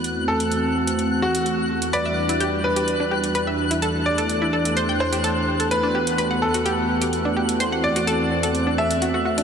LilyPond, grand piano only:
\new Staff \with { instrumentName = "Grand piano" } { \time 4/4 \key e \minor \tempo 4 = 127 r8 a'2 fis'4. | d''4. b'4. r4 | r8 d''2 c''4. | b'4. a'4. r4 |
r8 d''2 e''4. | }